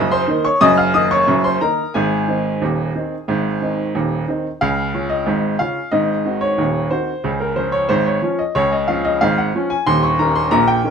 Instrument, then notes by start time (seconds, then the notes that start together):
upright piano
Already playing: F#1 F#2 D#5 D#6
0.11 C5 C6
0.28 D#3 A#3 D#4
0.45 C#5 C#6
0.61 F#1 F#2 D#5 D#6
0.78 F5 F6
0.94 D#3 A#3 D#4 D#5 D#6
1.11 C#5 C#6
1.28 F#1 F#2
1.44 C5 C6
1.61 D#3 A#3 D#4 A#4 A#5
1.94 G#1 G#2 G#4 G#5
2.28 D#3 C4 D#4
2.61 D#1 D#2
2.95 D#3 C4 D#4
3.28 G#1 G#2
3.62 D#3 C4 D#4
3.95 D#1 D#2
4.28 D#3 C4 D#4
4.61 C#2 C#3 F5
4.94 C#3 C#4 F4
5.09 D#5
5.26 G#1 G#2
5.59 C#3 C#4 F4 F5
5.92 G#1 G#2 D#5
6.25 D#3 C4 F#4
6.41 C#5
6.58 D#1 D#2
6.91 D#3 C4 F#4 C5
7.24 C#2 C#3
7.40 A#4
7.56 F3 C#4 F4 C5
7.72 C#5
7.89 G#1 G#2 C5
8.06 C#5
8.22 F3 C#4 F4
8.39 D#5
8.55 C#2 C#3 C#5
8.72 D#5
8.88 F3 C#4 F4 F5
9.05 D#5
9.21 G#1 G#2 F5
9.38 F#5
9.55 F3 C#4 F4
9.70 G#5
9.87 D#1 D#2 C6
10.03 C#6
10.19 D#3 C#4 A#4 A#5
10.35 C6
10.51 A#1 A#2 A#5
10.68 G5
10.84 D#3 C#4 A#4